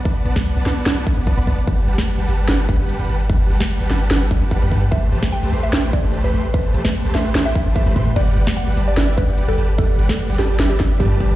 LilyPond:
<<
  \new Staff \with { instrumentName = "Synth pluck" } { \time 4/4 \key g \major \tempo 4 = 148 r1 | r1 | r1 | e''8 r8 g''8 r16 e''8 r16 d''8 r16 b'8 r16 |
b'8 r16 b'8 r16 e''8 r16 e''8 r16 e''8 r8 | d''8 r8 fis''8 r16 d''8 r16 b'8 r16 a'8 r16 | a'8 r16 a'8 r16 g'8 r16 g'8 r16 g'8 r8 | }
  \new Staff \with { instrumentName = "Supersaw synth" } { \time 4/4 \key g \major <b b' d'' fis'' a''>8 <b b' d'' fis'' a''>16 <b b' d'' fis'' a''>8 <b b' d'' fis'' a''>16 <b b' d'' fis'' a''>8 <b b' d'' fis'' a''>8 <b b' d'' fis'' b''>16 <b b' d'' fis'' a''>8 <b b' d'' fis'' b''>16 <b b' d'' fis'' a''>16 r16 | <g g' b' fis'' a''>8 <g g' b' fis'' a''>16 <g g' b' fis'' a''>8 <g g' b' fis'' a''>16 <g g' b' fis'' a''>8 <g g' b' fis'' a''>8 <g g' b' fis'' b''>16 <g g' b' fis'' a''>8 <g g' b' fis'' b''>16 <g g' b' fis'' a''>16 r16 | <g g' b' fis'' a''>8 <g g' b' fis'' a''>16 <g g' b' fis'' a''>8 <g g' b' fis'' a''>16 <g g' b' fis'' a''>8 <g g' b' fis'' a''>8 <g g' b' fis'' b''>16 <g g' b' fis'' a''>8 <g g' b' fis'' b''>16 <g g' b' fis'' a''>16 r16 | <a g' b' c'' a''>8 <a g' b' c'' a''>16 <a g' b' c'' a''>8 <a g' b' c'' a''>16 <a g' b' c'' c'''>8 <a g' b' c'' g''>8 <a g' b' c'' b''>16 <a g' b' c'' a''>8 <a g' b' c'' b''>16 <a g' b' c'' c'''>16 r16 |
<a g' b' c'' a''>8 <a g' b' c'' a''>16 <a g' b' c'' a''>8 <a g' b' c'' a''>16 <a g' b' c'' c'''>8 <a g' b' c'' g''>8 <a g' b' c'' b''>16 <a g' b' c'' a''>8 <a g' b' c'' b''>16 <a g' b' c'' c'''>16 r16 | <g g' b' d'' fis''>8 <g g' b' d'' fis''>16 <g g' b' d'' fis''>8 <g g' b' d'' fis''>16 <g g' b' d'' a''>8 <g g' b' d'' e''>8 <g g' b' d'' g''>16 <g g' b' d'' fis''>8 <g g' b' d'' g''>16 <g g' b' d'' a''>16 r16 | <g g' b' d'' fis''>8 <g g' b' d'' fis''>16 <g g' b' d'' fis''>8 <g g' b' d'' fis''>16 <g g' b' d'' a''>8 <g g' b' d'' e''>8 <g g' b' d'' e''>8 <g g' b' d'' a''>8 <g g' b' d'' a''>16 r16 | }
  \new Staff \with { instrumentName = "808-style bass" } { \clef bass \time 4/4 \key g \major b,,8 b,,16 b,,8 b,,16 b,,8 b,,8 b,,16 b,,8 b,,16 b,,8 | g,,8 g,,16 g,,8 g,,16 g,,8 g,,8 g,,16 g,,8 g,,16 g,,8 | g,,8 g,,16 g,,8 g,,16 g,,8 g,,8 g,,16 g,,8 g,16 g,8 | a,,8 a,,16 a,,8 a,,16 a,,8 a,,8 a,,16 a,,8 a,,16 a,,8 |
a,,8 a,,16 a,,8 a,,16 a,,8 a,,8 a,,16 a,,8 a,,16 a,8 | g,,8 g,,16 r8 g,,16 g,,8 g,,8 g,,16 g,,8 g,,16 g,,8 | g,,8 g,,16 g,,8 g,,16 g,,8 g,,8 g,,8 g,8 g,,8 | }
  \new DrumStaff \with { instrumentName = "Drums" } \drummode { \time 4/4 <hh bd>8 hh16 <bd sn>16 hh16 hh32 hh32 <hho sn>8 <hh sn>8 <hh bd>8 <hh bd>16 hh32 hh32 <hh bd>8 | <hh bd>8 hh16 <bd sn>16 hh16 hh32 hh32 hho8 <hh sn>8 <hh bd>8 hh16 hh32 hh32 hh8 | <hh bd>8 hh16 <bd sn>16 hh16 hh32 hh32 <hho sn>8 <hh sn>8 <hh bd>8 <hh bd>16 hh32 hh32 <hh bd>8 | <hh bd>8 hh16 <bd sn>16 hh16 hh32 hh32 hho8 <hh sn>8 <hh bd>8 hh16 hh32 hh32 hh8 |
<hh bd>8 hh16 <bd sn>16 hh16 hh32 hh32 <hho sn>8 <hh sn>8 <hh bd>8 <hh bd>16 hh32 hh32 <hh bd>8 | <hh bd>8 hh16 <bd sn>16 hh16 hh32 hh32 hho8 <hh sn>8 <hh bd>8 hh16 hh32 hh32 hh8 | <hh bd>8 hh16 <bd sn>16 hh16 hh32 hh32 <hho sn>8 <hh sn>8 <hh bd sn>8 <hh bd>16 hh32 hh32 <hh bd>32 hh32 hh16 | }
>>